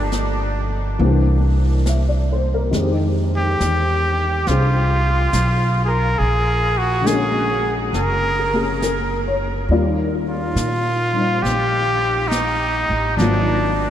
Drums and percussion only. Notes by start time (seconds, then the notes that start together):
0.12 snare, hi-hat pedal
0.99 brush sweep
1.86 snare, hi-hat pedal
2.73 brush sweep, snare
3.60 snare, hi-hat pedal
4.47 brush sweep, snare
5.33 snare, hi-hat pedal
6.20 brush sweep
7.06 snare, hi-hat pedal
7.94 brush sweep, snare
8.82 snare, hi-hat pedal
9.69 brush sweep
10.56 snare, hi-hat pedal
11.45 brush sweep, snare
12.31 snare, hi-hat pedal
13.19 brush sweep, snare